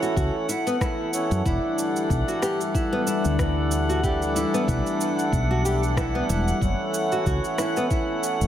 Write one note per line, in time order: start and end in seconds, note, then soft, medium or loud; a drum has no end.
0.00 0.45 E3 loud
0.00 0.46 A3 medium
0.00 0.47 C#4 loud
0.00 1.42 E4 medium
0.00 0.16 F#4 medium
0.00 1.42 A4 medium
0.00 1.42 F#5 loud
0.00 8.47 F#5 medium
0.00 cabasa soft
0.16 0.28 C#2 medium
0.16 0.34 F#4 medium
0.16 kick loud
0.16 cabasa soft
0.49 0.66 E4 medium
0.49 cabasa medium
0.67 0.75 B3 medium
0.67 cabasa soft
0.80 1.10 E3 medium
0.80 1.10 A3 medium
0.80 1.44 E4 medium
0.80 1.11 E4 medium
0.80 kick loud
0.80 cross-stick medium
0.80 cabasa soft
1.12 1.42 E3 medium
1.12 1.42 A3 medium
1.12 1.43 C#4 loud
1.12 cabasa medium
1.31 1.40 F#2 medium
1.31 cabasa soft
1.44 1.57 E1 medium
1.44 3.35 E3 medium
1.44 6.58 G3 medium
1.44 3.36 A3 medium
1.44 6.58 D4 medium
1.44 2.09 E4 medium
1.44 8.47 F#5 loud
1.44 kick loud
1.44 cabasa soft
1.48 3.37 D4 loud
1.79 cabasa medium
1.96 cabasa soft
2.10 2.21 B1 medium
2.10 kick medium
2.10 cabasa soft
2.28 2.42 F#4 medium
2.28 cabasa soft
2.42 2.60 G4 medium
2.42 cross-stick medium
2.42 cabasa medium
2.61 cabasa soft
2.75 2.92 E4 medium
2.75 kick loud
2.75 cabasa soft
2.93 3.01 B3 loud
3.07 3.70 E4 medium
3.07 cabasa medium
3.25 4.43 D2 medium
3.25 cabasa soft
3.38 4.00 E3 medium
3.38 4.00 A3 medium
3.38 4.01 D4 medium
3.38 kick loud
3.38 cross-stick medium
3.38 cabasa soft
3.72 cabasa medium
3.89 4.03 F#4 medium
3.89 cabasa soft
4.02 5.61 E3 loud
4.02 5.62 A3 medium
4.02 5.63 D4 loud
4.02 4.21 G4 medium
4.02 kick medium
4.02 cabasa soft
4.22 cabasa soft
4.36 4.53 E4 medium
4.36 cabasa medium
4.54 4.62 B3 medium
4.54 cabasa soft
4.68 4.79 B1 medium
4.68 5.31 E4 medium
4.68 kick medium
4.68 cabasa soft
4.87 cabasa soft
5.01 cabasa medium
5.19 cabasa soft
5.32 6.21 B1 medium
5.32 kick medium
5.32 cabasa soft
5.51 5.64 F#4 medium
5.63 6.57 E3 loud
5.63 6.58 A3 medium
5.63 6.59 D4 loud
5.63 5.82 G4 medium
5.63 cabasa medium
5.83 cabasa soft
5.97 6.14 E4 medium
5.97 kick loud
5.97 cross-stick medium
5.97 cabasa soft
6.15 6.23 B3 medium
6.29 6.51 E1 medium
6.29 6.62 E4 medium
6.29 cabasa medium
6.48 cabasa soft
6.60 6.73 F#1 medium
6.60 8.47 E3 medium
6.60 8.47 A3 medium
6.60 8.47 C#4 medium
6.60 8.47 E4 medium
6.60 8.47 A4 medium
6.60 kick medium
6.60 cabasa soft
6.94 cabasa medium
7.12 7.26 F#4 medium
7.12 cabasa soft
7.26 7.37 C#2 medium
7.26 7.44 F#4 medium
7.26 kick medium
7.26 cabasa soft
7.44 cabasa soft
7.58 7.76 E4 medium
7.58 cross-stick medium
7.58 cabasa medium
7.77 7.85 B3 loud
7.77 cabasa soft
7.91 8.47 E4 medium
7.91 kick loud
7.91 cabasa soft
8.23 cabasa medium
8.41 8.47 E1 medium
8.41 cabasa soft